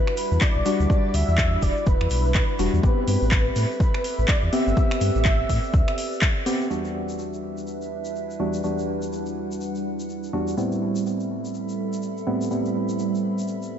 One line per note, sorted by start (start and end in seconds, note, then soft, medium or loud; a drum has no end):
0.00 0.63 G3 medium
0.00 2.79 G3 medium
0.00 0.63 D4 medium
0.00 2.79 D4 medium
0.00 2.79 E4 medium
0.00 0.63 F#4 medium
0.00 0.43 B4 medium
0.00 2.80 E5 medium
0.00 2.79 B5 medium
0.07 finger snap medium
0.17 open hi-hat loud
0.17 shaker medium
0.31 0.38 E2 medium
0.31 shaker soft
0.41 0.89 D5 loud
0.41 kick loud
0.41 clap loud
0.41 shaker medium
0.56 0.62 B1 loud
0.66 0.87 G3 medium
0.66 0.87 D4 medium
0.66 0.87 F#4 loud
0.66 open hi-hat medium
0.66 shaker medium
0.80 0.87 D2 medium
0.80 shaker soft
0.90 2.57 G3 medium
0.90 2.57 D4 medium
0.90 2.57 F#4 medium
0.90 1.16 D5 loud
0.90 kick loud
0.90 shaker soft
1.14 1.24 D2 medium
1.14 1.64 E5 loud
1.14 open hi-hat loud
1.14 shaker loud
1.28 1.57 E2 loud
1.28 shaker soft
1.38 kick loud
1.38 clap loud
1.38 shaker medium
1.62 1.72 E1 loud
1.62 1.88 D5 loud
1.62 kick medium
1.62 open hi-hat medium
1.62 shaker medium
1.77 shaker soft
1.86 1.96 E1 loud
1.86 2.10 B4 loud
1.86 kick loud
1.86 shaker soft
2.01 2.08 E2 loud
2.01 finger snap medium
2.10 2.42 B1 medium
2.10 2.56 B4 medium
2.10 open hi-hat loud
2.10 shaker medium
2.25 shaker soft
2.34 kick loud
2.34 clap loud
2.34 shaker soft
2.59 2.69 E1 medium
2.59 2.81 G3 medium
2.59 2.81 D4 medium
2.59 2.81 F#4 loud
2.59 open hi-hat medium
2.59 shaker medium
2.73 2.80 E2 loud
2.73 shaker soft
2.83 2.93 A1 medium
2.83 4.50 B3 medium
2.83 4.50 C4 medium
2.83 4.50 G4 medium
2.83 6.67 G4 medium
2.83 6.67 A4 medium
2.83 6.67 B4 medium
2.83 3.76 B4 loud
2.83 4.75 E5 medium
2.83 kick loud
2.83 shaker soft
3.08 3.17 G2 loud
3.08 open hi-hat loud
3.08 shaker medium
3.22 3.51 A1 loud
3.22 shaker soft
3.31 kick loud
3.31 clap loud
3.31 shaker soft
3.56 3.66 A2 medium
3.56 open hi-hat medium
3.56 shaker medium
3.71 shaker soft
3.80 4.30 B4 loud
3.80 kick loud
3.80 shaker medium
3.94 finger snap medium
4.04 open hi-hat loud
4.04 shaker medium
4.19 4.25 A1 medium
4.19 shaker soft
4.28 4.55 D5 loud
4.28 kick loud
4.28 clap loud
4.28 shaker medium
4.43 4.49 E2 medium
4.53 4.75 B3 medium
4.53 4.75 C4 medium
4.53 4.75 G4 loud
4.53 6.22 E5 loud
4.53 open hi-hat medium
4.53 shaker medium
4.67 4.74 G1 medium
4.67 shaker soft
4.77 6.44 B3 medium
4.77 6.44 C4 medium
4.77 6.44 G4 medium
4.77 6.69 D5 medium
4.77 kick loud
4.77 shaker soft
4.91 finger snap medium
4.91 shaker soft
5.01 5.11 G2 loud
5.01 open hi-hat loud
5.01 shaker medium
5.15 5.44 A1 loud
5.15 shaker soft
5.25 kick loud
5.25 clap loud
5.25 shaker medium
5.49 5.59 A2 loud
5.49 kick medium
5.49 open hi-hat medium
5.49 shaker medium
5.64 shaker soft
5.73 5.83 D2 medium
5.73 kick loud
5.73 shaker soft
5.88 finger snap medium
5.88 shaker soft
5.98 open hi-hat loud
5.98 shaker medium
6.12 shaker soft
6.21 kick loud
6.21 clap loud
6.21 shaker soft
6.46 6.68 B3 medium
6.46 6.68 C4 medium
6.46 6.68 G4 loud
6.46 open hi-hat medium
6.46 shaker medium
6.61 shaker soft
6.70 8.37 E2 medium
6.70 8.37 G3 medium
6.70 13.79 G3 medium
6.70 8.37 D4 medium
6.70 10.54 D4 medium
6.70 10.54 E4 medium
6.70 8.37 F#4 medium
6.70 10.54 B4 medium
6.70 8.62 E5 medium
6.70 shaker medium
6.85 shaker soft
7.09 shaker medium
7.19 shaker medium
7.33 shaker soft
7.57 shaker medium
7.67 shaker medium
7.82 shaker soft
8.05 shaker medium
8.16 shaker medium
8.30 shaker soft
8.40 8.62 E2 medium
8.40 8.62 G3 medium
8.40 8.62 D4 medium
8.40 8.62 F#4 loud
8.54 shaker medium
8.64 10.31 E2 medium
8.64 10.31 G3 medium
8.64 10.31 D4 medium
8.64 10.31 F#4 medium
8.64 10.56 F#5 medium
8.64 shaker medium
8.79 shaker soft
9.02 shaker medium
9.13 shaker medium
9.26 shaker soft
9.52 shaker medium
9.61 shaker medium
9.75 shaker soft
10.00 shaker medium
10.09 shaker medium
10.23 shaker soft
10.33 10.55 E2 medium
10.33 10.55 G3 medium
10.33 10.55 D4 medium
10.33 10.55 F#4 loud
10.48 shaker medium
10.57 12.24 A2 medium
10.57 12.24 G3 medium
10.57 12.25 B3 medium
10.57 12.25 C4 medium
10.57 12.25 E4 medium
10.57 13.79 A4 medium
10.57 13.79 E5 medium
10.57 13.79 B5 medium
10.57 shaker medium
10.72 shaker soft
10.96 shaker medium
11.06 shaker medium
11.20 shaker soft
11.45 shaker medium
11.54 shaker medium
11.69 shaker soft
11.93 shaker medium
12.02 shaker medium
12.18 shaker soft
12.27 12.49 A2 medium
12.27 12.49 G3 medium
12.27 12.49 B3 medium
12.27 12.49 C4 medium
12.27 12.49 E4 loud
12.41 shaker medium
12.51 13.79 A2 medium
12.51 13.79 G3 medium
12.51 13.79 B3 medium
12.51 13.79 C4 medium
12.51 13.79 E4 medium
12.51 shaker medium
12.65 shaker soft
12.89 shaker medium
12.99 shaker medium
13.15 shaker soft
13.38 shaker medium
13.48 shaker medium
13.62 shaker soft